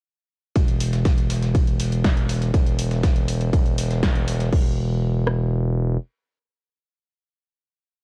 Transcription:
0.56 E1, kick, closed hi-hat, ride
0.68 closed hi-hat
0.80 open hi-hat, ride
0.93 snare, closed hi-hat
1.05 kick, snare, closed hi-hat, ride
1.18 closed hi-hat
1.30 snare, open hi-hat, ride
1.43 snare, closed hi-hat
1.55 kick, closed hi-hat, ride
1.67 closed hi-hat
1.80 open hi-hat, ride
1.92 closed hi-hat
2.04 kick, snare, closed hi-hat, ride
2.17 closed hi-hat
2.29 snare, open hi-hat
2.42 snare, closed hi-hat
2.54 E1, kick, closed hi-hat, ride
2.67 closed hi-hat
2.79 open hi-hat, ride
2.91 snare, closed hi-hat
3.04 kick, snare, closed hi-hat, ride
3.16 closed hi-hat
3.28 open hi-hat, ride
3.41 closed hi-hat, ride
3.53 E1, kick, closed hi-hat, ride
3.66 closed hi-hat
3.78 open hi-hat, ride
3.91 snare, closed hi-hat
4.03 kick, snare, closed hi-hat, ride
4.15 closed hi-hat
4.28 open hi-hat, ride
4.40 snare, closed hi-hat
4.52 E1, kick, crash
5.27 cross-stick

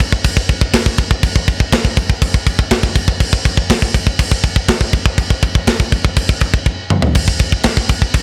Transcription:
0.00 kick, crash
0.12 kick
0.24 kick, crash
0.37 kick
0.49 kick, crash
0.61 kick
0.73 kick, snare, crash
0.86 kick
0.98 kick, crash
1.11 kick
1.23 kick, crash
1.36 kick
1.48 kick, crash
1.60 kick
1.73 kick, snare, crash
1.85 kick
1.97 kick, crash
2.10 kick
2.22 kick, crash
2.34 kick
2.47 kick, crash
2.59 kick
2.71 kick, snare, crash
2.83 kick
2.95 kick, crash
3.08 kick
3.20 kick, crash
3.33 kick
3.45 kick, crash
3.57 kick
3.70 kick, snare, crash
3.82 kick
3.94 kick, crash
4.07 kick
4.19 kick, crash
4.32 kick
4.44 kick, crash
4.56 kick
4.68 kick, snare, crash
4.81 kick
4.93 kick, crash
5.06 kick
5.18 kick, crash
5.30 kick
5.42 kick, crash
5.55 kick
5.67 kick, snare, crash
5.80 kick
5.92 kick, crash
6.05 kick
6.16 kick, crash
6.29 kick
6.40 kick, crash
6.54 kick
6.66 kick
6.90 mid tom
7.02 floor tom
7.15 kick, crash
7.28 kick
7.39 kick, crash
7.52 kick
7.63 kick, snare, crash
7.77 kick
7.89 kick, crash
8.02 kick
8.14 kick, crash

